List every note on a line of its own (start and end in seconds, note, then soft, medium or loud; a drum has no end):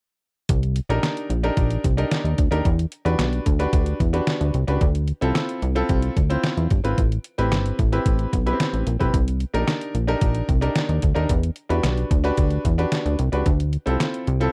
0.49 0.80 C2 loud
0.49 kick loud
0.49 closed hi-hat medium
0.63 closed hi-hat medium
0.76 closed hi-hat medium
0.89 1.00 A#1 medium
0.89 1.29 D4 medium
0.89 1.29 D#4 medium
0.89 1.29 G4 medium
0.89 1.29 A#4 loud
0.89 closed hi-hat medium
1.03 snare loud
1.03 clap medium
1.03 closed hi-hat medium
1.17 closed hi-hat medium
1.30 1.51 A#1 medium
1.30 closed hi-hat medium
1.43 1.83 D4 medium
1.43 1.83 D#4 medium
1.43 1.83 G4 medium
1.43 1.83 A#4 loud
1.43 closed hi-hat soft
1.57 1.78 A#1 medium
1.57 kick loud
1.57 closed hi-hat medium
1.71 closed hi-hat soft
1.84 2.05 C2 medium
1.84 kick medium
1.84 closed hi-hat medium
1.97 2.37 D4 medium
1.97 2.37 D#4 medium
1.97 2.37 G4 medium
1.97 2.37 A#4 medium
1.97 closed hi-hat medium
2.11 snare medium
2.11 clap medium
2.11 closed hi-hat medium
2.24 2.35 D#2 medium
2.24 closed hi-hat soft
2.38 2.49 D2 medium
2.38 kick medium
2.38 closed hi-hat medium
2.51 2.62 D#2 medium
2.51 2.65 D4 medium
2.51 2.65 D#4 medium
2.51 2.65 G4 medium
2.51 2.65 A#4 medium
2.51 closed hi-hat medium
2.65 2.86 E2 loud
2.65 kick loud
2.65 closed hi-hat medium
2.79 closed hi-hat medium
2.92 closed hi-hat medium
3.05 3.16 E2 loud
3.05 3.44 D4 medium
3.05 3.45 F#4 medium
3.05 3.45 G4 medium
3.05 3.45 B4 loud
3.05 closed hi-hat medium
3.19 3.40 B1 loud
3.19 snare loud
3.19 clap medium
3.19 closed hi-hat medium
3.33 closed hi-hat medium
3.46 3.67 D2 loud
3.46 kick medium
3.46 closed hi-hat medium
3.59 3.99 D4 medium
3.59 3.99 F#4 medium
3.59 3.99 G4 medium
3.59 3.99 B4 loud
3.59 closed hi-hat soft
3.73 3.94 D2 loud
3.73 kick loud
3.73 closed hi-hat medium
3.86 closed hi-hat soft
4.00 4.21 E2 medium
4.00 kick medium
4.00 closed hi-hat medium
4.13 4.53 D4 medium
4.13 4.53 F#4 medium
4.13 4.53 G4 medium
4.13 4.53 B4 medium
4.13 closed hi-hat soft
4.27 snare medium
4.27 clap medium
4.27 closed hi-hat medium
4.41 4.51 D2 medium
4.41 closed hi-hat soft
4.54 4.65 C2 loud
4.54 closed hi-hat medium
4.67 4.78 C#2 medium
4.67 4.81 D4 medium
4.67 4.81 F#4 medium
4.67 4.81 G4 medium
4.67 4.82 B4 medium
4.67 closed hi-hat medium
4.81 5.12 D2 loud
4.81 kick loud
4.81 closed hi-hat medium
4.95 closed hi-hat medium
5.08 closed hi-hat medium
5.21 5.33 C2 medium
5.21 5.61 C4 medium
5.21 5.61 E4 medium
5.21 5.61 F4 medium
5.21 5.61 A4 medium
5.21 closed hi-hat medium
5.35 snare loud
5.35 clap medium
5.35 closed hi-hat medium
5.49 closed hi-hat soft
5.62 5.83 C2 loud
5.62 closed hi-hat medium
5.75 6.15 C4 loud
5.75 6.15 E4 medium
5.75 6.15 F4 medium
5.75 6.15 A4 loud
5.75 closed hi-hat soft
5.89 6.10 C2 loud
5.89 kick loud
5.89 closed hi-hat medium
6.02 closed hi-hat soft
6.17 6.37 D2 medium
6.17 kick medium
6.17 closed hi-hat medium
6.30 6.69 C4 medium
6.30 6.69 E4 medium
6.30 6.69 F4 medium
6.30 6.69 C5 medium
6.30 closed hi-hat soft
6.43 snare medium
6.43 clap medium
6.43 closed hi-hat medium
6.57 6.68 E2 medium
6.57 closed hi-hat soft
6.70 6.81 G1 loud
6.70 kick medium
6.70 closed hi-hat medium
6.84 6.95 G#1 medium
6.84 6.97 C4 medium
6.84 6.98 E4 medium
6.84 6.98 F4 medium
6.84 6.98 B4 medium
6.84 closed hi-hat medium
6.98 7.19 A1 loud
6.98 kick loud
6.98 closed hi-hat medium
7.12 closed hi-hat medium
7.24 closed hi-hat medium
7.38 7.53 A1 medium
7.38 7.77 C4 medium
7.38 7.77 E4 medium
7.38 7.77 G4 medium
7.38 7.78 B4 loud
7.38 closed hi-hat medium
7.52 7.72 G1 loud
7.52 snare loud
7.52 clap medium
7.52 closed hi-hat medium
7.66 closed hi-hat medium
7.79 8.00 A1 loud
7.79 kick medium
7.79 closed hi-hat medium
7.92 8.31 C4 medium
7.92 8.31 E4 medium
7.92 8.32 G4 medium
7.92 8.32 B4 loud
7.92 closed hi-hat soft
8.06 8.27 A1 medium
8.06 kick loud
8.06 closed hi-hat medium
8.19 closed hi-hat soft
8.33 8.54 B1 loud
8.33 kick medium
8.33 closed hi-hat medium
8.46 8.53 B3 medium
8.46 8.85 E4 medium
8.46 8.86 G4 medium
8.46 8.86 B4 medium
8.46 closed hi-hat soft
8.53 8.89 C4 medium
8.60 snare loud
8.60 clap medium
8.60 closed hi-hat medium
8.73 8.84 A1 medium
8.73 closed hi-hat soft
8.87 8.97 A#1 medium
8.87 closed hi-hat medium
8.99 9.11 B1 medium
8.99 9.13 C4 medium
8.99 9.14 E4 medium
8.99 9.14 G4 medium
8.99 9.14 B4 loud
8.99 kick medium
8.99 closed hi-hat soft
9.14 9.45 C2 loud
9.14 kick loud
9.14 closed hi-hat medium
9.28 closed hi-hat medium
9.40 closed hi-hat medium
9.54 9.65 A#1 medium
9.54 9.93 D4 medium
9.54 9.93 D#4 medium
9.54 9.93 G4 medium
9.54 9.93 A#4 loud
9.54 closed hi-hat medium
9.68 snare loud
9.68 clap medium
9.68 closed hi-hat medium
9.81 closed hi-hat medium
9.95 10.16 A#1 medium
9.95 closed hi-hat medium
10.07 10.47 D4 medium
10.07 10.47 D#4 medium
10.07 10.47 G4 medium
10.07 10.48 A#4 loud
10.07 closed hi-hat soft
10.21 10.43 A#1 medium
10.21 kick loud
10.21 closed hi-hat medium
10.35 closed hi-hat soft
10.49 10.70 C2 loud
10.49 kick medium
10.49 closed hi-hat medium
10.61 11.01 D4 medium
10.61 11.01 D#4 medium
10.61 11.01 G4 medium
10.61 11.01 A#4 medium
10.61 closed hi-hat medium
10.76 snare loud
10.76 clap medium
10.76 closed hi-hat medium
10.89 11.00 D#2 medium
10.89 closed hi-hat soft
11.02 11.13 D2 medium
11.02 kick medium
11.02 closed hi-hat medium
11.15 11.27 D#2 medium
11.15 11.29 D4 medium
11.15 11.29 D#4 medium
11.15 11.30 G4 medium
11.15 11.30 A#4 loud
11.15 closed hi-hat medium
11.29 11.51 E2 loud
11.29 kick loud
11.29 closed hi-hat medium
11.43 closed hi-hat medium
11.56 closed hi-hat medium
11.69 11.81 E2 medium
11.69 12.09 D4 medium
11.69 12.09 F#4 medium
11.69 12.09 G4 medium
11.69 12.09 B4 medium
11.69 closed hi-hat medium
11.84 12.05 B1 medium
11.84 snare loud
11.84 clap medium
11.84 closed hi-hat medium
11.97 closed hi-hat medium
12.11 12.32 D2 loud
12.11 kick medium
12.11 closed hi-hat medium
12.24 12.63 D4 loud
12.24 12.63 F#4 medium
12.24 12.64 G4 medium
12.24 12.64 B4 loud
12.24 closed hi-hat soft
12.37 12.59 D2 medium
12.37 kick loud
12.37 closed hi-hat medium
12.51 closed hi-hat soft
12.65 12.86 E2 medium
12.65 kick medium
12.65 closed hi-hat medium
12.78 13.18 D4 medium
12.78 13.18 F#4 medium
12.78 13.18 G4 medium
12.78 13.18 B4 medium
12.78 closed hi-hat medium
12.92 snare medium
12.92 clap medium
12.92 closed hi-hat medium
13.06 13.16 D2 medium
13.06 closed hi-hat soft
13.19 13.30 C2 loud
13.19 closed hi-hat medium
13.32 13.43 C#2 medium
13.32 13.46 D4 medium
13.32 13.46 F#4 medium
13.32 13.46 G4 medium
13.32 13.46 B4 medium
13.32 closed hi-hat medium
13.46 13.77 D2 loud
13.46 kick loud
13.46 closed hi-hat medium
13.60 closed hi-hat medium
13.73 closed hi-hat medium
13.86 13.97 C2 medium
13.86 14.25 C4 medium
13.86 14.26 E4 medium
13.86 14.26 F4 medium
13.86 14.26 A4 medium
13.86 closed hi-hat medium
14.00 snare loud
14.00 clap medium
14.00 closed hi-hat medium
14.14 closed hi-hat medium
14.27 14.48 C2 loud
14.27 closed hi-hat medium
14.40 14.52 C4 medium
14.40 14.52 E4 medium
14.40 14.52 F4 medium
14.40 14.52 A4 loud
14.40 closed hi-hat soft